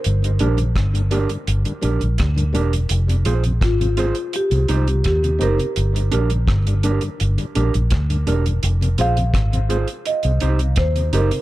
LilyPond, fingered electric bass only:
\new Staff \with { instrumentName = "Fingered electric bass" } { \clef bass \time 4/4 \key g \phrygian \tempo 4 = 84 g,,8 bes,,8 g,,8. r16 g,,16 r16 bes,,16 bes,,16 d,8 e,,8 | f,,8 bes,,8 aes,,8. r8 c,16 c,8 ees,8 fis,,16 r16 | g,,8 bes,,8 g,,8. r16 g,,16 r16 bes,,16 bes,,16 d,8 e,,8 | f,,8 bes,,8 aes,,8. r8 c,16 c,8 ees,8 fis,,16 r16 | }